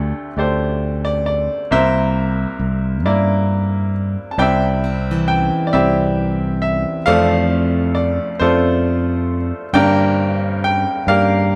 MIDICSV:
0, 0, Header, 1, 4, 480
1, 0, Start_track
1, 0, Tempo, 892857
1, 919, Time_signature, 6, 3, 24, 8
1, 6212, End_track
2, 0, Start_track
2, 0, Title_t, "Grand piano"
2, 0, Program_c, 0, 0
2, 0, Control_c, 0, 64, 127
2, 0, Note_on_c, 0, 38, 63
2, 0, Note_on_c, 0, 50, 64
2, 0, Note_on_c, 0, 57, 82
2, 0, Note_on_c, 0, 67, 78
2, 0, Note_on_c, 0, 74, 93
2, 148, Note_off_c, 0, 57, 0
2, 149, Note_off_c, 0, 67, 0
2, 149, Note_off_c, 0, 74, 0
2, 202, Note_on_c, 0, 57, 54
2, 202, Note_on_c, 0, 67, 52
2, 207, Note_on_c, 0, 74, 58
2, 211, Note_on_c, 0, 72, 64
2, 554, Note_off_c, 0, 74, 0
2, 562, Note_on_c, 0, 74, 71
2, 576, Note_off_c, 0, 72, 0
2, 670, Note_off_c, 0, 74, 0
2, 678, Note_on_c, 0, 74, 71
2, 867, Note_off_c, 0, 57, 0
2, 868, Note_off_c, 0, 67, 0
2, 897, Note_off_c, 0, 38, 0
2, 898, Note_off_c, 0, 50, 0
2, 918, Note_on_c, 0, 58, 60
2, 921, Note_on_c, 0, 36, 55
2, 922, Note_on_c, 0, 48, 52
2, 923, Note_on_c, 0, 64, 61
2, 923, Note_on_c, 0, 72, 72
2, 925, Note_on_c, 0, 76, 89
2, 926, Note_off_c, 0, 74, 0
2, 927, Control_c, 0, 64, 0
2, 930, Note_on_c, 0, 70, 61
2, 1037, Control_c, 0, 64, 127
2, 1586, Note_off_c, 0, 58, 0
2, 1589, Note_off_c, 0, 64, 0
2, 1589, Note_off_c, 0, 72, 0
2, 1643, Note_on_c, 0, 58, 67
2, 1643, Note_on_c, 0, 74, 68
2, 1644, Note_on_c, 0, 64, 63
2, 2101, Note_off_c, 0, 76, 0
2, 2104, Note_off_c, 0, 70, 0
2, 2310, Note_off_c, 0, 58, 0
2, 2310, Note_off_c, 0, 74, 0
2, 2311, Note_off_c, 0, 64, 0
2, 2319, Note_on_c, 0, 81, 61
2, 2340, Note_off_c, 0, 36, 0
2, 2340, Note_off_c, 0, 48, 0
2, 2356, Note_on_c, 0, 36, 53
2, 2356, Note_on_c, 0, 64, 61
2, 2357, Note_on_c, 0, 48, 55
2, 2357, Note_on_c, 0, 60, 67
2, 2358, Note_off_c, 0, 81, 0
2, 2358, Note_on_c, 0, 74, 74
2, 2361, Note_on_c, 0, 79, 90
2, 2366, Note_off_c, 0, 74, 0
2, 2366, Control_c, 0, 64, 0
2, 2374, Note_on_c, 0, 74, 71
2, 2376, Note_on_c, 0, 76, 72
2, 2463, Control_c, 0, 64, 127
2, 2829, Note_off_c, 0, 79, 0
2, 2837, Note_on_c, 0, 79, 80
2, 3027, Note_off_c, 0, 60, 0
2, 3027, Note_off_c, 0, 64, 0
2, 3040, Note_off_c, 0, 74, 0
2, 3048, Note_off_c, 0, 79, 0
2, 3048, Note_on_c, 0, 74, 65
2, 3067, Note_off_c, 0, 76, 0
2, 3080, Note_off_c, 0, 74, 0
2, 3080, Note_on_c, 0, 76, 82
2, 3081, Note_on_c, 0, 60, 61
2, 3084, Note_on_c, 0, 64, 53
2, 3089, Note_on_c, 0, 74, 66
2, 3090, Note_on_c, 0, 67, 60
2, 3549, Note_off_c, 0, 76, 0
2, 3558, Note_on_c, 0, 76, 72
2, 3749, Note_off_c, 0, 60, 0
2, 3751, Note_off_c, 0, 64, 0
2, 3753, Note_off_c, 0, 74, 0
2, 3778, Note_off_c, 0, 36, 0
2, 3778, Note_off_c, 0, 48, 0
2, 3784, Note_off_c, 0, 67, 0
2, 3794, Note_on_c, 0, 77, 91
2, 3799, Note_on_c, 0, 57, 68
2, 3802, Note_on_c, 0, 53, 63
2, 3804, Note_on_c, 0, 74, 77
2, 3805, Note_on_c, 0, 29, 56
2, 3805, Note_on_c, 0, 41, 52
2, 3807, Note_off_c, 0, 76, 0
2, 3808, Note_on_c, 0, 69, 64
2, 3809, Control_c, 0, 64, 0
2, 3901, Control_c, 0, 64, 127
2, 4264, Note_off_c, 0, 74, 0
2, 4272, Note_on_c, 0, 74, 69
2, 4292, Note_off_c, 0, 77, 0
2, 4467, Note_off_c, 0, 57, 0
2, 4469, Note_off_c, 0, 53, 0
2, 4502, Note_off_c, 0, 69, 0
2, 4513, Note_on_c, 0, 72, 78
2, 4516, Note_off_c, 0, 74, 0
2, 4522, Note_on_c, 0, 57, 64
2, 4524, Note_on_c, 0, 74, 65
2, 4525, Note_on_c, 0, 65, 58
2, 4526, Note_on_c, 0, 69, 53
2, 5034, Note_off_c, 0, 72, 0
2, 5188, Note_off_c, 0, 57, 0
2, 5189, Note_off_c, 0, 74, 0
2, 5190, Note_off_c, 0, 65, 0
2, 5220, Note_off_c, 0, 29, 0
2, 5220, Note_off_c, 0, 41, 0
2, 5221, Note_off_c, 0, 69, 0
2, 5235, Note_on_c, 0, 79, 98
2, 5239, Note_on_c, 0, 58, 73
2, 5241, Note_on_c, 0, 43, 60
2, 5241, Note_on_c, 0, 74, 74
2, 5242, Note_on_c, 0, 31, 58
2, 5244, Note_on_c, 0, 67, 66
2, 5246, Note_on_c, 0, 70, 69
2, 5247, Control_c, 0, 64, 0
2, 5345, Control_c, 0, 64, 127
2, 5713, Note_off_c, 0, 79, 0
2, 5721, Note_on_c, 0, 79, 85
2, 5906, Note_off_c, 0, 58, 0
2, 5909, Note_off_c, 0, 67, 0
2, 5938, Note_off_c, 0, 74, 0
2, 5940, Note_off_c, 0, 70, 0
2, 5957, Note_on_c, 0, 77, 87
2, 5958, Note_on_c, 0, 74, 59
2, 5959, Note_on_c, 0, 58, 64
2, 5962, Note_on_c, 0, 70, 58
2, 5963, Note_on_c, 0, 67, 61
2, 5967, Note_off_c, 0, 79, 0
2, 6212, Note_off_c, 0, 31, 0
2, 6212, Note_off_c, 0, 43, 0
2, 6212, Note_off_c, 0, 58, 0
2, 6212, Note_off_c, 0, 67, 0
2, 6212, Note_off_c, 0, 70, 0
2, 6212, Note_off_c, 0, 74, 0
2, 6212, Note_off_c, 0, 77, 0
2, 6212, End_track
3, 0, Start_track
3, 0, Title_t, "Steel-string acoustic guitar"
3, 0, Program_c, 1, 25
3, 2601, Note_on_c, 1, 60, 39
3, 2748, Note_on_c, 1, 52, 41
3, 3800, Note_on_c, 1, 57, 55
3, 3879, Note_off_c, 1, 60, 0
3, 4012, Note_off_c, 1, 52, 0
3, 5076, Note_off_c, 1, 57, 0
3, 5234, Note_on_c, 1, 60, 47
3, 6212, Note_off_c, 1, 60, 0
3, 6212, End_track
4, 0, Start_track
4, 0, Title_t, "Fingered electric bass"
4, 0, Program_c, 2, 33
4, 0, Note_on_c, 2, 38, 85
4, 62, Note_off_c, 2, 38, 0
4, 197, Note_on_c, 2, 38, 73
4, 791, Note_off_c, 2, 38, 0
4, 920, Note_on_c, 2, 36, 82
4, 1315, Note_off_c, 2, 36, 0
4, 1395, Note_on_c, 2, 36, 78
4, 1636, Note_off_c, 2, 36, 0
4, 1636, Note_on_c, 2, 43, 68
4, 2232, Note_off_c, 2, 43, 0
4, 2353, Note_on_c, 2, 36, 82
4, 2951, Note_off_c, 2, 36, 0
4, 3083, Note_on_c, 2, 36, 79
4, 3676, Note_off_c, 2, 36, 0
4, 3800, Note_on_c, 2, 41, 83
4, 4394, Note_off_c, 2, 41, 0
4, 4518, Note_on_c, 2, 41, 82
4, 5112, Note_off_c, 2, 41, 0
4, 5232, Note_on_c, 2, 43, 82
4, 5828, Note_off_c, 2, 43, 0
4, 5950, Note_on_c, 2, 43, 89
4, 6212, Note_off_c, 2, 43, 0
4, 6212, End_track
0, 0, End_of_file